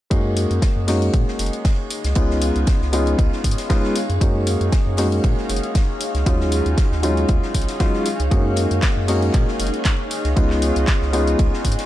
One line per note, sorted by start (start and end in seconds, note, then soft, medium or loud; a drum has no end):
0.10 0.46 F#2 medium
0.10 0.85 G#3 medium
0.10 0.85 A#3 medium
0.10 0.85 C#4 medium
0.10 11.86 D#4 medium
0.10 0.85 D#4 medium
0.10 0.85 F#4 medium
0.10 kick loud
0.10 closed hi-hat medium
0.10 ride medium
0.37 open hi-hat medium
0.37 ride medium
0.51 0.60 F#2 medium
0.51 closed hi-hat medium
0.62 kick loud
0.62 snare loud
0.62 closed hi-hat medium
0.62 ride medium
0.74 1.10 F#2 medium
0.74 11.86 G#4 medium
0.87 2.13 G#3 medium
0.87 2.13 A#3 medium
0.87 2.13 C#4 medium
0.87 2.13 D#4 medium
0.87 2.14 F#4 medium
0.87 snare soft
0.87 open hi-hat medium
0.87 open hi-hat loud
1.02 11.86 C#5 medium
1.02 11.86 F5 medium
1.02 closed hi-hat soft
1.13 1.25 A#2 loud
1.13 kick loud
1.13 closed hi-hat medium
1.13 ride medium
1.28 snare soft
1.39 1.50 F#1 medium
1.39 open hi-hat medium
1.39 ride medium
1.46 closed hi-hat medium
1.53 closed hi-hat soft
1.65 kick loud
1.65 snare loud
1.65 closed hi-hat medium
1.65 ride medium
1.90 open hi-hat loud
1.90 ride medium
2.04 2.14 C#2 medium
2.04 snare soft
2.04 closed hi-hat medium
2.15 2.51 C#2 medium
2.15 2.90 G#3 medium
2.15 2.90 B3 medium
2.15 2.90 C#4 medium
2.15 2.90 D#4 medium
2.15 2.91 F4 medium
2.15 kick loud
2.15 closed hi-hat medium
2.15 ride medium
2.30 snare soft
2.42 open hi-hat loud
2.42 ride medium
2.56 2.65 C#2 medium
2.56 closed hi-hat soft
2.67 kick loud
2.67 snare loud
2.67 closed hi-hat medium
2.67 ride medium
2.81 3.15 C#2 medium
2.81 snare soft
2.92 3.67 G#3 medium
2.92 3.67 B3 medium
2.92 3.67 C#4 medium
2.92 3.67 D#4 medium
2.92 3.67 F4 medium
2.92 open hi-hat loud
2.92 ride medium
3.06 closed hi-hat soft
3.06 ride soft
3.19 3.30 C#2 medium
3.19 kick loud
3.19 closed hi-hat medium
3.19 ride medium
3.32 snare medium
3.44 3.56 G#2 medium
3.44 kick medium
3.44 open hi-hat loud
3.44 ride medium
3.51 closed hi-hat medium
3.57 snare medium
3.57 open hi-hat medium
3.70 3.94 G#3 medium
3.70 3.94 B3 medium
3.70 3.94 C#4 medium
3.70 3.94 D#4 medium
3.70 3.94 F4 loud
3.70 kick loud
3.70 snare loud
3.70 closed hi-hat medium
3.70 ride medium
3.84 snare soft
3.96 open hi-hat loud
3.96 ride medium
4.10 4.19 F#2 medium
4.10 closed hi-hat medium
4.21 4.57 F#2 medium
4.21 4.95 G#3 medium
4.21 4.95 A#3 medium
4.21 4.95 C#4 medium
4.21 4.95 D#4 medium
4.21 4.96 F#4 medium
4.21 kick loud
4.21 closed hi-hat medium
4.21 ride medium
4.47 open hi-hat loud
4.47 ride medium
4.61 4.70 F#2 medium
4.61 closed hi-hat soft
4.72 kick loud
4.72 snare loud
4.72 closed hi-hat medium
4.72 ride medium
4.86 5.20 F#2 medium
4.97 6.23 G#3 medium
4.97 6.23 A#3 medium
4.97 6.24 C#4 medium
4.97 6.24 D#4 medium
4.97 6.24 F#4 medium
4.97 snare soft
4.97 open hi-hat medium
4.97 open hi-hat loud
5.12 closed hi-hat soft
5.24 5.35 A#2 medium
5.24 kick loud
5.24 closed hi-hat medium
5.24 ride medium
5.37 snare soft
5.49 5.61 F#1 medium
5.49 open hi-hat loud
5.49 ride medium
5.56 closed hi-hat medium
5.63 closed hi-hat soft
5.75 kick loud
5.75 snare loud
5.75 closed hi-hat medium
5.75 ride medium
6.00 open hi-hat loud
6.00 ride medium
6.15 6.24 C#2 medium
6.15 snare soft
6.15 closed hi-hat soft
6.26 6.62 D#2 medium
6.26 7.00 F#3 medium
6.26 7.00 G#3 medium
6.26 7.01 C#4 medium
6.26 7.01 D#4 medium
6.26 7.01 F4 medium
6.26 kick loud
6.26 closed hi-hat medium
6.26 ride medium
6.41 snare medium
6.52 open hi-hat loud
6.52 ride medium
6.66 6.75 D#2 medium
6.66 closed hi-hat soft
6.77 kick loud
6.77 snare loud
6.77 closed hi-hat medium
6.77 ride medium
6.91 7.25 D#2 medium
6.91 snare soft
7.03 7.77 F#3 medium
7.03 7.77 G#3 medium
7.03 7.77 C#4 medium
7.03 7.78 D#4 medium
7.03 7.78 F4 medium
7.03 open hi-hat loud
7.03 ride medium
7.17 closed hi-hat soft
7.17 ride soft
7.28 7.40 D#2 medium
7.28 kick loud
7.28 closed hi-hat medium
7.28 ride medium
7.43 snare soft
7.54 7.66 A#1 medium
7.54 kick medium
7.54 open hi-hat loud
7.54 ride medium
7.61 closed hi-hat medium
7.68 snare soft
7.68 open hi-hat medium
7.80 8.05 F#3 medium
7.80 8.05 G#3 medium
7.80 8.05 C#4 medium
7.80 8.05 D#4 medium
7.80 8.06 F4 loud
7.80 kick loud
7.80 snare loud
7.80 closed hi-hat medium
7.80 ride medium
7.93 snare soft
8.06 open hi-hat loud
8.06 ride medium
8.20 8.29 C#2 medium
8.20 closed hi-hat soft
8.31 8.67 F#2 medium
8.31 9.05 G#3 medium
8.31 9.05 A#3 medium
8.31 9.06 C#4 medium
8.31 9.06 D#4 medium
8.31 9.06 F#4 medium
8.31 kick loud
8.31 closed hi-hat medium
8.31 ride medium
8.56 open hi-hat loud
8.56 ride medium
8.71 8.80 F#2 medium
8.71 closed hi-hat soft
8.82 kick loud
8.82 snare loud
8.82 clap loud
8.82 closed hi-hat medium
8.82 ride medium
8.97 9.30 F#2 medium
9.08 10.34 G#3 medium
9.08 10.34 A#3 medium
9.08 10.34 C#4 medium
9.08 10.34 D#4 medium
9.08 10.34 F#4 medium
9.08 snare soft
9.08 open hi-hat loud
9.08 open hi-hat medium
9.22 closed hi-hat soft
9.33 9.45 A#2 loud
9.33 kick loud
9.33 clap soft
9.33 closed hi-hat medium
9.33 ride medium
9.48 snare soft
9.60 9.71 F#1 medium
9.60 open hi-hat loud
9.60 ride medium
9.67 closed hi-hat medium
9.74 closed hi-hat soft
9.85 kick loud
9.85 snare loud
9.85 clap loud
9.85 closed hi-hat medium
9.85 ride medium
10.11 open hi-hat loud
10.11 ride medium
10.24 10.34 C#2 medium
10.24 snare soft
10.24 closed hi-hat soft
10.36 10.72 C#2 medium
10.36 11.10 G#3 medium
10.36 11.11 B3 medium
10.36 11.11 C#4 medium
10.36 11.11 D#4 medium
10.36 11.11 F4 medium
10.36 kick loud
10.36 closed hi-hat medium
10.36 ride medium
10.50 snare soft
10.50 clap soft
10.62 open hi-hat medium
10.62 ride medium
10.76 10.86 C#2 medium
10.76 closed hi-hat soft
10.87 kick loud
10.87 snare loud
10.87 clap loud
10.87 closed hi-hat medium
10.87 ride medium
11.02 11.35 C#2 loud
11.02 snare soft
11.13 11.86 G#3 medium
11.13 11.86 B3 medium
11.13 11.86 C#4 medium
11.13 11.86 D#4 medium
11.13 11.86 F4 medium
11.13 open hi-hat medium
11.13 ride medium
11.27 closed hi-hat soft
11.27 ride soft
11.39 11.50 C#2 medium
11.39 kick loud
11.39 closed hi-hat medium
11.39 ride medium
11.53 snare medium
11.65 11.76 G#2 medium
11.65 kick medium
11.65 open hi-hat medium
11.65 ride medium
11.72 closed hi-hat medium
11.79 snare medium
11.79 open hi-hat medium